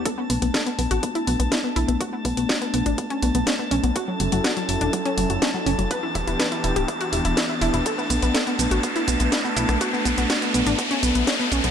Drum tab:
HH |x-oxxxoxxxoxx-ox|x-oxxxoxxxoxx-ox|x-oxxxoxxxoxx-ox|x-oxxxoxxxoxx-ox|
SH |----------------|----------------|----------------|----------------|
SD |----o-------o---|----o-------o---|----o-------o---|----o-------o---|
BD |o---o---o---o---|o-o-o---o---o---|o---o---o---o---|o-o-o---o---o---|

HH |x-oxxxoxxxoxx-ox|x-oxxxoxxxoxx-ox|
SH |xxxxxxxxxxxxxxxx|xxxxxxxxxxxxxxxx|
SD |----o-------o--r|----o-------o---|
BD |o---o---o---o---|o-o-o---o---o---|